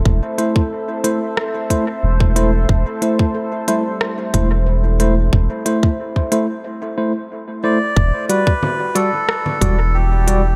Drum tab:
HH |--x---x---x---x-|--x---x---x---x-|--x---x---------|--x---x---x---x-|
SD |--------r-------|--------r-------|----------------|--------r-------|
CG |----------------|----------------|----------------|----O----O------|
BD |o--o------o--o--|o--o------o-----|o--o-o----------|o--o------o-----|